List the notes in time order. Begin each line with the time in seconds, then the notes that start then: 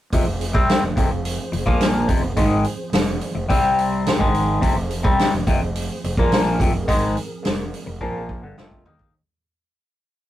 0.13 F1 F2 C3 F3 C4 G#4 C5, kick, open hi-hat
0.25 F1 F2 C3
0.41 open hi-hat
0.53 C2 C3 G3 C4, kick
0.69 snare, open hi-hat
0.82 F1 F2 C3
0.96 F1 F2 C3, kick, open hi-hat
1.09 F1 F2 C3
1.25 open hi-hat
1.52 F1 F2 C3, open hi-hat
1.66 A#1 A#2 F3 A#3, kick
1.81 snare, open hi-hat
2.08 F1 F2 C3, kick, open hi-hat
2.22 F1 F2 C3
2.37 G#1 G#2 D#3 G#3, kick, open hi-hat
2.64 open hi-hat
2.92 F1 F2 C3, snare, open hi-hat
3.21 open hi-hat
3.35 F1 F2 C3
3.49 C2 C3 G3 C4 G4 C5, kick, open hi-hat
3.79 open hi-hat
4.07 snare, open hi-hat
4.19 G#1 G#2 D#3 F3 G#3 C4 G#4, kick
4.35 open hi-hat
4.61 F1 F2 C3, kick, open hi-hat
4.76 F1 F2 C3
4.91 open hi-hat
5.03 C2 C3 G3 C4, kick
5.19 snare, open hi-hat
5.32 F1 F2 C3
5.47 F1 F2 C3, kick, open hi-hat
5.61 F1 F2 C3
5.76 open hi-hat
6.04 F1 F2 C3, open hi-hat
6.17 A#1 A#2 F3 A#3, kick
6.32 snare, open hi-hat
6.47 A#4
6.60 F1 F2 C3, kick, open hi-hat
6.73 F1 F2 C3
6.88 G#1 G#2 D#3 G#3, kick, open hi-hat
7.17 open hi-hat
7.44 F1 F2 C3, snare, open hi-hat
7.74 open hi-hat
7.86 F1 F2 C3
8.01 A#1 A#2 F3 A#3, kick
8.29 kick
8.43 G1 G2 D3
8.58 F1 F2 C3 F3, snare
8.71 kick
8.85 D#2 D#3 A#3 D#4, floor tom
8.99 kick